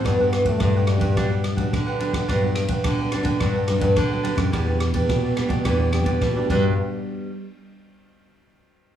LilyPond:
<<
  \new Staff \with { instrumentName = "Cavaquinho" } { \time 4/4 \key g \major \tempo 4 = 107 <d' g' b' fis''>16 <g' b' fis''>16 r16 <g' b' fis''>16 <d' g' b' fis''>16 <g' b' fis''>8 <g' b' fis''>16 <d' g' b' fis''>16 <g' b' fis''>16 r16 <g' b' fis''>8 <g' b' fis''>16 <d' g' b' fis''>16 <g' b' fis''>16 | <d' g' b' fis''>16 <g' b' fis''>16 r16 <g' b' fis''>8 <g' b' fis''>16 <d' g' b' fis''>16 <g' b' fis''>16 <d' g' b' fis''>16 <g' b' fis''>16 r16 <g' b' fis''>16 <d' g' b' fis''>16 <g' b' fis''>16 <d' g' b' fis''>8 | <e' g' b' d''>16 <g' b' d''>16 r16 <g' b' d''>8 <g' b' d''>16 <e' g' b' d''>16 <g' b' d''>16 <e' g' b' d''>16 <g' b' d''>16 r16 <g' b' d''>16 <e' g' b' d''>16 <g' b' d''>16 <d' g' b' fis''>8 | r1 | }
  \new Staff \with { instrumentName = "Nylon-string guitar" } { \time 4/4 \key g \major << { <fis b d'>8 r16 <fis b d'>8. <fis b d'>16 r16 <fis b d'>8 r16 <fis b d'>8. <fis b d'>8 | <fis b d'>8. r16 <fis b d'>8 <fis b d'>8. r16 <fis b d'>8. <fis b d'>8. | <b d' g'>4 <b d' g'>16 r16 <b d' g'>16 r16 <b d' g'>8 <b d' g'>8 r16 <b d' g'>16 <g b d' fis'>8 | r1 | } \\ { g,4 d4 g,4 d4 | g,4 d4 g,4 d4 | e4 b,4 e4 b,8 r8 | r1 | } >> }
  \new Staff \with { instrumentName = "Trombone" } { \time 4/4 \key g \major b8. a8. g4. r4 | r1 | r1 | r1 | }
  \new Staff \with { instrumentName = "Nylon-string guitar" } { \clef bass \time 4/4 \key g \major g,16 g,8. g,8. g,16 g4 d4 | g,4 d8 r16 d16 g,8. g,16 d8. fis,16 | e,4 b,8 r16 b,16 e,8. e,16 b,8 g,8 | r1 | }
  \new DrumStaff \with { instrumentName = "Drums" } \drummode { \time 4/4 <bd cymr ss>8 <cymr ss>16 <bd cymr>16 <bd cymr ss>8 <cymr ss>16 <bd cymr>16 <bd cymr ss>8 <cymr ss>16 <bd cymr>16 <bd cymr ss>8 cymr16 <bd cymr ss>16 | <bd cymr ss>8 <cymr ss>16 <bd cymr>16 <bd cymr ss>8 <cymr ss>16 <bd cymr>16 <bd cymr ss>8 <cymr ss>16 <bd cymr>16 <bd cymr ss>8 cymr16 <bd cymr ss>16 | <bd cymr ss>8 <cymr ss>16 <bd cymr>16 <bd cymr ss>8 <cymr ss>16 <bd cymr>16 <bd cymr ss>8 <cymr ss>16 <bd cymr>16 <bd cymr ss>8 <cymc bd>8 | r4 r4 r4 r4 | }
>>